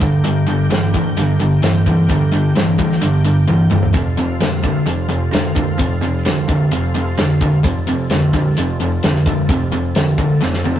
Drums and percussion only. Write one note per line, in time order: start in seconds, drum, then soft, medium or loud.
0.01 kick medium
0.01 closed hi-hat medium
0.25 closed hi-hat medium
0.48 closed hi-hat medium
0.71 snare loud
0.71 closed hi-hat medium
0.94 kick medium
0.94 closed hi-hat medium
1.17 closed hi-hat medium
1.41 closed hi-hat medium
1.63 snare loud
1.63 closed hi-hat medium
1.86 kick medium
1.86 closed hi-hat medium
2.10 kick loud
2.10 closed hi-hat medium
2.33 closed hi-hat medium
2.56 snare loud
2.56 closed hi-hat medium
2.79 kick medium
2.79 closed hi-hat medium
2.92 snare soft
3.02 closed hi-hat medium
3.25 closed hi-hat medium
3.48 high tom medium
3.71 mid tom medium
3.83 floor tom medium
3.94 kick loud
3.94 closed hi-hat medium
4.17 closed hi-hat medium
4.41 snare loud
4.41 closed hi-hat medium
4.64 kick medium
4.64 closed hi-hat medium
4.87 closed hi-hat medium
5.09 closed hi-hat medium
5.33 snare loud
5.33 closed hi-hat medium
5.56 kick medium
5.56 closed hi-hat medium
5.79 kick loud
5.79 closed hi-hat medium
6.02 closed hi-hat medium
6.25 snare medium
6.25 closed hi-hat medium
6.49 kick medium
6.49 closed hi-hat medium
6.71 closed hi-hat medium
6.95 closed hi-hat medium
7.18 snare loud
7.18 closed hi-hat medium
7.41 kick medium
7.41 closed hi-hat medium
7.64 kick loud
7.64 closed hi-hat medium
7.87 closed hi-hat medium
8.10 snare medium
8.10 closed hi-hat medium
8.33 kick medium
8.33 snare soft
8.33 closed hi-hat medium
8.57 closed hi-hat medium
8.80 closed hi-hat medium
9.03 snare loud
9.03 closed hi-hat medium
9.16 snare soft
9.26 kick medium
9.26 closed hi-hat medium
9.49 kick loud
9.49 closed hi-hat medium
9.72 closed hi-hat medium
9.95 snare loud
9.95 closed hi-hat medium
10.18 kick medium
10.18 closed hi-hat medium
10.42 snare medium
10.53 snare medium
10.64 high tom medium
10.76 high tom medium